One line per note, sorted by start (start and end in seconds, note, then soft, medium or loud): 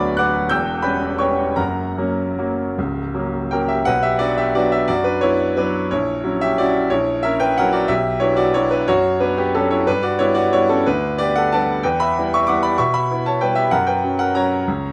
0.00 0.53 D1 medium
0.00 0.53 D2 medium
0.00 0.15 F#3 medium
0.00 0.15 B3 medium
0.00 0.15 D4 medium
0.00 0.53 C#5 medium
0.00 0.16 D5 medium
0.00 0.16 B5 medium
0.00 0.53 C#6 medium
0.00 0.17 D6 loud
0.17 0.48 F#3 medium
0.17 0.48 B3 medium
0.17 0.48 D4 medium
0.17 0.49 F#5 medium
0.17 0.49 D6 medium
0.17 0.50 F#6 loud
0.49 0.83 E1 medium
0.49 0.83 E2 medium
0.49 0.81 G5 medium
0.49 0.81 E6 medium
0.49 0.83 G6 medium
0.82 1.15 G3 medium
0.82 1.16 B3 medium
0.82 1.16 C#4 medium
0.82 1.17 B4 medium
0.82 1.17 G5 medium
0.82 1.19 B5 medium
1.19 1.54 G3 soft
1.19 1.54 B3 soft
1.19 1.54 C#4 soft
1.19 1.55 C#5 medium
1.19 1.55 G5 medium
1.19 1.57 C#6 medium
1.56 1.96 F#1 soft
1.56 1.96 F#2 medium
1.56 3.51 A#4 medium
1.56 3.65 F#5 medium
1.56 3.69 A#5 medium
1.98 2.35 F#3 soft
1.98 2.35 A#3 soft
1.98 2.35 C#4 soft
2.38 2.73 F#3 soft
2.38 2.73 A#3 soft
2.38 2.73 C#4 soft
2.78 3.13 C#1 medium
2.78 3.13 C#2 medium
3.14 3.47 F#3 soft
3.14 3.48 A#3 soft
3.14 3.48 C#4 soft
3.51 3.84 F#3 soft
3.51 3.84 A#3 soft
3.51 3.84 C#4 medium
3.51 3.69 A#4 medium
3.51 3.69 G5 medium
3.68 3.86 G4 medium
3.68 3.86 E5 medium
3.85 4.19 B1 medium
3.85 4.02 B4 medium
3.85 4.03 F#5 loud
4.03 4.19 G4 medium
4.03 4.20 E5 medium
4.19 4.51 F#3 medium
4.19 4.51 B3 medium
4.19 4.52 D4 medium
4.19 4.36 F#4 medium
4.19 4.37 D5 loud
4.38 4.54 G4 medium
4.38 4.55 E5 medium
4.55 4.85 F#3 medium
4.55 4.86 B3 medium
4.55 4.86 D4 medium
4.55 4.72 F#4 medium
4.55 4.72 D5 medium
4.72 4.88 G4 medium
4.72 4.89 E5 medium
4.88 5.21 F#2 medium
4.88 5.04 F#4 medium
4.88 5.05 D5 medium
5.04 5.21 D4 medium
5.04 5.22 B4 medium
5.21 5.53 B3 medium
5.21 5.54 D4 medium
5.21 5.55 E4 medium
5.21 5.56 C#5 medium
5.57 5.88 F#3 medium
5.57 5.87 B3 soft
5.57 5.88 D4 medium
5.57 5.90 B4 medium
5.91 6.22 A#1 medium
5.91 6.23 E4 medium
5.91 6.40 C#5 medium
6.24 6.53 F#3 medium
6.24 6.54 C#4 medium
6.24 6.54 E4 medium
6.41 6.57 G4 medium
6.41 6.57 E5 loud
6.58 6.88 F#3 soft
6.58 6.88 C#4 medium
6.58 6.88 E4 medium
6.58 6.89 F#4 medium
6.58 6.91 D5 medium
6.90 7.22 A#1 medium
6.90 7.21 E4 medium
6.90 7.23 C#5 medium
7.23 7.54 C#4 medium
7.23 7.54 E4 medium
7.23 7.39 A#4 medium
7.23 7.39 E5 loud
7.40 7.56 B4 medium
7.40 7.57 G5 loud
7.58 7.87 F#3 medium
7.58 7.87 C#4 medium
7.58 7.88 E4 medium
7.58 7.73 A#4 medium
7.58 7.74 F#5 loud
7.73 7.88 F#4 medium
7.73 7.89 D5 medium
7.88 8.20 B1 medium
7.88 8.19 G4 medium
7.88 8.21 E5 loud
8.20 8.52 F#3 medium
8.20 8.52 B3 medium
8.20 8.53 D4 medium
8.20 8.37 E4 medium
8.20 8.38 C#5 medium
8.37 8.54 F#4 medium
8.37 8.55 D5 medium
8.54 8.85 F#3 medium
8.54 8.86 B3 medium
8.54 8.71 D4 medium
8.54 8.72 E4 medium
8.54 8.72 C#5 loud
8.71 8.88 D4 medium
8.71 8.88 B4 medium
8.88 9.20 F#2 medium
8.88 9.19 F#4 medium
8.88 9.21 C#5 loud
9.20 9.37 B3 medium
9.20 9.37 D4 medium
9.20 9.37 B4 medium
9.37 9.54 B3 medium
9.37 9.54 G4 medium
9.55 9.85 F#3 medium
9.55 9.85 B3 soft
9.55 9.71 C#4 medium
9.55 9.85 D4 medium
9.55 9.71 A4 medium
9.71 9.86 E4 medium
9.71 9.87 C#5 medium
9.87 10.19 G2 medium
9.87 10.02 D4 medium
9.87 10.03 B4 loud
10.03 10.18 F#4 medium
10.03 10.19 D5 medium
10.19 10.50 G3 medium
10.19 10.49 B3 medium
10.19 10.50 D4 medium
10.19 10.35 E4 medium
10.19 10.36 C#5 loud
10.35 10.51 F#4 medium
10.35 10.52 D5 medium
10.53 10.82 G3 medium
10.53 10.82 B3 medium
10.53 10.82 D4 medium
10.53 10.68 E4 medium
10.53 10.69 C#5 loud
10.69 10.84 C#4 medium
10.69 10.85 A4 medium
10.86 11.18 D2 medium
10.86 11.17 D4 medium
10.86 11.18 B4 medium
11.18 11.49 B3 medium
11.18 11.49 D4 medium
11.18 11.34 G4 medium
11.18 11.35 D5 loud
11.36 11.51 A4 medium
11.36 11.51 F#5 loud
11.52 11.81 G3 medium
11.52 11.81 B3 medium
11.52 11.81 D4 medium
11.52 11.82 D5 medium
11.52 11.83 A5 loud
11.83 12.14 E2 medium
11.83 11.99 B4 medium
11.83 11.99 G5 medium
12.00 12.30 E5 medium
12.00 12.32 B5 loud
12.18 12.46 G3 medium
12.18 12.46 B3 medium
12.18 12.46 E4 medium
12.34 12.48 E5 medium
12.34 12.49 C#6 loud
12.47 12.76 G3 medium
12.47 12.76 B3 soft
12.47 12.76 E4 medium
12.47 12.63 F#5 medium
12.47 12.63 D6 medium
12.63 12.77 D5 medium
12.63 12.78 B5 loud
12.78 13.08 B2 medium
12.78 12.93 E5 medium
12.78 12.93 C#6 loud
12.94 13.24 E5 medium
12.94 13.25 B5 medium
13.11 13.39 B3 soft
13.11 13.39 E4 medium
13.26 13.41 C#5 medium
13.26 13.41 A5 medium
13.41 13.70 G3 soft
13.41 13.70 B3 soft
13.41 13.70 E4 medium
13.41 13.56 B4 medium
13.41 13.57 G5 medium
13.55 13.71 G4 medium
13.55 13.72 E5 medium
13.71 14.03 F#2 medium
13.71 13.87 A#4 medium
13.71 13.87 F#5 medium
13.87 14.18 B4 medium
13.87 14.19 G5 medium
14.04 14.33 F#3 soft
14.04 14.33 C#4 soft
14.19 14.35 A#4 medium
14.19 14.36 F#5 medium
14.35 14.63 F#3 soft
14.35 14.64 C#4 medium
14.35 14.92 C#5 medium
14.35 14.92 A#5 medium
14.68 14.92 C#2 medium